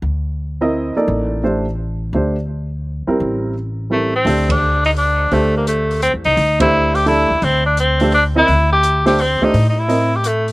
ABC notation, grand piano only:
X:1
M:3/4
L:1/8
Q:"Swing" 1/4=170
K:Cdor
V:1 name="Grand piano"
z3 [C=EB_e]2 [B,_EAd]- | [B,EAd]2 [A,DGc] z3 | [A,DGc] z4 [G,C=EB]- | [G,C=EB]2 z2 [G,CEB] z |
[A,DGc]4- [A,DGc] z | [A,DGc]4- [A,DGc] z | z [A,DGc]3 [A,DGA] z | z3 [A,DGc] z [C=EB_e] |
z3 [A,DGc] z [A,DGc] | z2 [C=EB_e] z3 |]